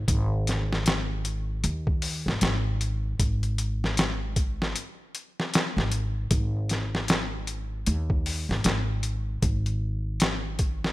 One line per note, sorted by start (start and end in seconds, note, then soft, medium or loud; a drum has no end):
0.08 1.61 G#1 medium
0.08 kick loud
0.08 closed hi-hat medium
0.47 snare soft
0.47 closed hi-hat medium
0.73 snare medium
0.86 snare loud
0.86 closed hi-hat medium
1.25 closed hi-hat medium
1.64 2.22 D#2 medium
1.64 closed hi-hat medium
1.87 kick medium
2.02 open hi-hat medium
2.26 2.40 G#1 medium
2.26 snare soft
2.41 3.17 G#1 medium
2.41 snare loud
2.41 closed hi-hat medium
2.81 closed hi-hat medium
3.19 4.72 G#1 medium
3.19 kick loud
3.19 closed hi-hat medium
3.43 closed hi-hat soft
3.58 closed hi-hat medium
3.84 snare soft
3.97 snare loud
3.97 closed hi-hat medium
4.36 kick medium
4.36 closed hi-hat medium
4.62 snare medium
4.76 closed hi-hat medium
5.15 closed hi-hat medium
5.40 snare soft
5.54 snare loud
5.54 closed hi-hat medium
5.77 6.28 G#1 medium
5.77 snare medium
5.92 closed hi-hat medium
6.31 7.84 G#1 medium
6.31 kick loud
6.31 closed hi-hat medium
6.69 snare soft
6.69 closed hi-hat medium
6.95 snare medium
7.08 snare loud
7.08 closed hi-hat medium
7.47 closed hi-hat medium
7.86 8.45 D#2 medium
7.86 closed hi-hat medium
8.10 kick medium
8.26 open hi-hat medium
8.49 8.63 G#1 medium
8.49 snare soft
8.64 9.40 G#1 medium
8.64 snare loud
8.64 closed hi-hat medium
9.03 closed hi-hat medium
9.42 10.93 G#1 medium
9.42 kick loud
9.42 closed hi-hat medium
9.66 closed hi-hat soft
10.20 snare loud
10.20 closed hi-hat medium
10.59 kick medium
10.59 closed hi-hat medium
10.84 snare medium